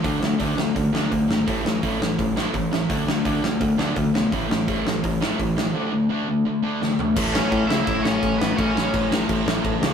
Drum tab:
CC |--------|--------|--------|--------|
HH |o-o-o-o-|o-o-o-o-|o-o-o-o-|o-o-o-o-|
SD |-o-o-o-o|-o-o-o-o|-o-o-o-o|-o-o-o-o|
FT |--------|--------|--------|--------|
BD |o-o-o-o-|o-o-o-o-|o-o-o-o-|o-o-o-o-|

CC |--------|x-x-x-x-|x-x-x-x-|
HH |--------|--------|--------|
SD |------o-|-o-o-o-o|-o-o-o-o|
FT |-------o|--------|--------|
BD |--------|o-o-o-o-|o-o-o-o-|